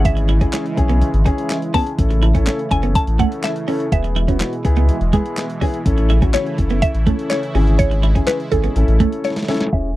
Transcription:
Already playing: sub bass G#1, analog synth pad C#3 E3 G#3 E4, grand piano C#4 E4 G#4
0.05 synth pluck E5, kick, closed hi-hat
0.17 muted clean electric guitar stroke, closed hi-hat
0.29 clean electric guitar E4, closed hi-hat
0.41 grand piano C#4 E4 G#4, clean electric guitar C#4, kick, closed hi-hat
0.53 clean electric guitar C#4, snare, clap, closed hi-hat
0.66 closed hi-hat
0.77 sub bass B1, grand piano C#4 E4 G#4, muted clean electric guitar stroke, kick, closed hi-hat
0.89 clean electric guitar B3, closed hi-hat
1.01 closed hi-hat
1.14 sub bass G#1, closed hi-hat
1.25 grand piano C#4 E4 G#4, clean electric guitar C#4, kick, closed hi-hat
1.38 closed hi-hat
1.50 snare, clap, closed hi-hat
1.62 closed hi-hat
1.74 clean electric guitar B3, grand piano C#4 E4 G#4, synth pluck A5, kick, open hi-hat
1.87 closed hi-hat
1.98 sub bass A1, analog synth pad C#3 A3, grand piano C#4 E4 A4, kick, closed hi-hat
2.11 muted clean electric guitar stroke, closed hi-hat
2.23 clean electric guitar E4, closed hi-hat
2.34 grand piano C#4 E4 A4, clean electric guitar C#4, kick, closed hi-hat
2.47 clean electric guitar C#4, snare, clap, closed hi-hat
2.59 closed hi-hat
2.71 sub bass F#1, grand piano C#4 E4 A4, synth pluck G#5, muted clean electric guitar stroke, kick, closed hi-hat
2.83 clean electric guitar B3, closed hi-hat
2.95 synth pluck A5, kick, closed hi-hat
3.07 sub bass A1, closed hi-hat
3.19 clean electric guitar A3, grand piano C#4 E4 A4, synth pluck F#5, kick, closed hi-hat
3.32 closed hi-hat
3.44 synth pluck E5, snare, clap, closed hi-hat
3.56 closed hi-hat
3.67 grand piano C#4 E4 A4, clean electric guitar C#4, open hi-hat
3.80 closed hi-hat
3.92 sub bass E1, analog synth pad B2 E3 G#3, grand piano B3 E4 G#4, synth pluck E5, kick, closed hi-hat
4.04 muted clean electric guitar stroke, closed hi-hat
4.16 clean electric guitar E4, closed hi-hat
4.28 grand piano B3 E4 F#4, clean electric guitar C#4, kick, closed hi-hat
4.40 clean electric guitar C#4, snare, clap, closed hi-hat
4.53 closed hi-hat
4.64 sub bass C#2, grand piano B3 E4 G#4, muted clean electric guitar stroke, kick, closed hi-hat
4.76 clean electric guitar B3, closed hi-hat
4.89 closed hi-hat
5.01 sub bass E1, closed hi-hat
5.13 clean electric guitar G#3, grand piano B3 E4 G#4, kick, closed hi-hat
5.26 closed hi-hat
5.37 snare, clap, closed hi-hat
5.50 closed hi-hat
5.61 grand piano B3 E4 G#4, clean electric guitar C#4, kick, open hi-hat
5.74 closed hi-hat
5.85 sub bass A1, analog synth pad C#3 A3 E4, grand piano C#4 E4 A4, kick, closed hi-hat
5.98 muted clean electric guitar stroke, closed hi-hat
6.10 clean electric guitar E4, closed hi-hat
6.22 grand piano C#4 E4 F#4, clean electric guitar C#4, kick, closed hi-hat
6.34 clean electric guitar C#4, synth pluck C#5, snare, clap, closed hi-hat
6.46 closed hi-hat
6.58 sub bass F#1, grand piano C#4 E4 A4, muted clean electric guitar stroke, kick, closed hi-hat
6.70 clean electric guitar B3, closed hi-hat
6.82 synth pluck E5, kick, closed hi-hat
6.94 sub bass A1, closed hi-hat
7.06 clean electric guitar A3, grand piano C#4 E4 A4, kick, closed hi-hat
7.19 closed hi-hat
7.30 synth pluck C#5, snare, clap, closed hi-hat
7.43 closed hi-hat
7.55 sub bass G#1, analog synth pad G#3, grand piano C#4 E4 G#4, clean electric guitar C#4, open hi-hat
7.67 closed hi-hat
7.79 synth pluck C#5, kick, closed hi-hat
7.91 muted clean electric guitar stroke, closed hi-hat
8.03 clean electric guitar E4, closed hi-hat
8.15 clean electric guitar C#4, grand piano C#4 E4 G#4, kick, closed hi-hat
8.27 clean electric guitar C#4, synth pluck B4, snare, clap, closed hi-hat
8.40 closed hi-hat
8.52 sub bass G#1, grand piano C#4 E4 G#4, synth pluck A4, muted clean electric guitar stroke, kick, closed hi-hat
8.64 clean electric guitar B3, closed hi-hat
8.76 sub bass A1, analog synth pad A3, grand piano C#4 E4 A4, closed hi-hat
8.88 sub bass A1, closed hi-hat
9.00 clean electric guitar A3, grand piano C#4 E4 A4, kick, closed hi-hat
9.13 closed hi-hat
9.24 synth pluck C#5, snare, closed hi-hat
9.30 snare
9.36 snare, closed hi-hat
9.43 snare
9.48 grand piano C#4 E4 A4, clean electric guitar C#4, snare, open hi-hat
9.55 snare
9.61 snare, closed hi-hat
9.67 snare
9.73 sub bass E1, grand piano C#4 E4 G#4, synth pluck E5, kick

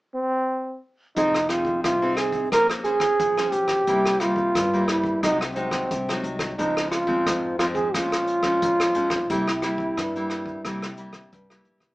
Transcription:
0.15 trombone C4
1.16 upright bass F1, nylon-string guitar F3 C4 D#4 G#4, trombone D#4, kick, closed hi-hat
1.34 cross-stick
1.49 nylon-string guitar C4 D#4 G#4, trombone F4, cross-stick, closed hi-hat
1.65 kick
1.84 upright bass C2, nylon-string guitar C3, trombone F4, kick, cross-stick, closed hi-hat
2.02 nylon-string guitar C4 D#4 G#4
2.17 trombone G#4, cross-stick, closed hi-hat
2.33 kick, closed hi-hat
2.52 upright bass A#1, nylon-string guitar A#3 C#4 G#4 C5, trombone A#4, kick, cross-stick, closed hi-hat
2.70 cross-stick, closed hi-hat
2.84 nylon-string guitar C#4 G#4 C5, trombone G#4, closed hi-hat
3.00 kick, cross-stick, closed hi-hat
3.20 upright bass A#1, nylon-string guitar F3, kick, closed hi-hat
3.38 nylon-string guitar C#4 G#4 C5, cross-stick, closed hi-hat
3.52 upright bass B1, trombone G4, closed hi-hat
3.68 kick, cross-stick
3.87 upright bass C2, nylon-string guitar C3 G3 A#3 E4, kick, closed hi-hat
4.05 cross-stick, closed hi-hat
4.20 nylon-string guitar G3 A#3, trombone F4, cross-stick, closed hi-hat
4.36 kick
4.55 upright bass G2, nylon-string guitar G2, kick, cross-stick, closed hi-hat
4.73 nylon-string guitar G3 A#3 E4, closed hi-hat
4.88 trombone E4, cross-stick, closed hi-hat
5.04 kick
5.23 upright bass C2, nylon-string guitar C3 F#3 G#3 D#4, trombone D#4, kick, cross-stick, closed hi-hat
5.41 cross-stick
5.55 nylon-string guitar F#3 G#3 D#4, trombone C4, closed hi-hat
5.71 kick, cross-stick
5.91 upright bass C2, nylon-string guitar C3, kick, closed hi-hat
6.09 nylon-string guitar F#3 G#3 D#4, cross-stick, closed hi-hat
6.23 upright bass C2, closed hi-hat
6.39 kick, cross-stick
6.58 upright bass C#2, nylon-string guitar C#3 F3 G#3 C4, trombone D#4, kick, closed hi-hat
6.77 cross-stick
6.91 trombone F4, cross-stick, closed hi-hat
7.07 nylon-string guitar F3 G#3 C4, kick
7.27 upright bass F2, nylon-string guitar G#2, kick, cross-stick, closed hi-hat
7.59 nylon-string guitar F3 G#3 C4, trombone F4, cross-stick, closed hi-hat
7.75 trombone G#4, kick, closed hi-hat
7.94 upright bass A#1, nylon-string guitar A#2 F3 G#3 C#4, trombone F4, kick, cross-stick, closed hi-hat
8.12 cross-stick, closed hi-hat
8.27 closed hi-hat
8.43 nylon-string guitar F3 G#3 C#4, kick, cross-stick, closed hi-hat
8.62 upright bass A#1, nylon-string guitar F2, kick, closed hi-hat
8.80 cross-stick, closed hi-hat
8.95 upright bass B1, nylon-string guitar F3 G#3 C#4, closed hi-hat
9.10 kick, cross-stick
9.30 upright bass C2, nylon-string guitar C3 G3 A#3 E4, trombone E4, kick, closed hi-hat
9.48 cross-stick, closed hi-hat
9.62 nylon-string guitar G3 A#3 E4, cross-stick, closed hi-hat
9.78 kick
9.97 upright bass G2, nylon-string guitar G2, kick, cross-stick, closed hi-hat
10.15 nylon-string guitar G3 A#3 E4, closed hi-hat
10.30 cross-stick, closed hi-hat
10.46 kick
10.65 upright bass C2, nylon-string guitar C3 G3 A#3 E4, kick, cross-stick, closed hi-hat
10.82 cross-stick
10.97 nylon-string guitar G3 A#3 E4, closed hi-hat
11.13 kick, cross-stick
11.32 upright bass C2, nylon-string guitar G2, kick, closed hi-hat
11.50 nylon-string guitar G3 A#3 E4, cross-stick, closed hi-hat
11.65 upright bass A#1, closed hi-hat
11.78 upright bass C2, kick, cross-stick

